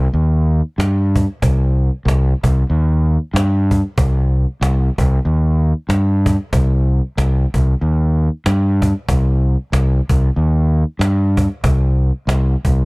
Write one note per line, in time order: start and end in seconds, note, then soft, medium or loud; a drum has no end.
0.13 0.60 D#2 loud
0.78 1.25 G2 medium
0.78 cajon slap loud
1.16 cajon bass medium
1.42 1.89 C2 medium
1.42 cajon bass loud
2.05 2.33 C2 loud
2.05 cajon slap loud
2.43 2.63 C2 loud
2.43 cajon bass medium
2.70 3.16 D#2 medium
3.34 3.80 G2 medium
3.34 cajon slap loud
3.71 cajon bass medium
3.98 4.44 C2 medium
3.98 cajon bass loud
4.61 4.88 C2 loud
4.61 cajon slap loud
4.98 5.18 C2 loud
4.98 cajon bass loud
5.25 5.72 D#2 medium
5.89 6.35 G2 loud
5.89 cajon slap loud
6.26 cajon bass medium
6.53 6.99 C2 medium
6.53 cajon bass loud
7.17 7.44 C2 loud
7.17 cajon slap loud
7.54 7.73 C2 loud
7.54 cajon bass medium
7.81 8.28 D#2 medium
8.46 8.92 G2 loud
8.46 cajon slap loud
8.82 cajon bass medium
9.08 9.55 C2 medium
9.08 cajon bass loud
9.72 9.99 C2 loud
9.72 cajon slap loud
10.09 10.29 C2 loud
10.09 cajon bass medium
10.36 10.83 D#2 medium
10.99 11.46 G2 loud
10.99 cajon slap loud
11.37 cajon bass loud
11.64 12.10 C2 medium
11.64 cajon bass loud
12.27 12.54 C2 loud
12.27 cajon slap loud
12.65 12.84 C2 medium
12.65 cajon bass loud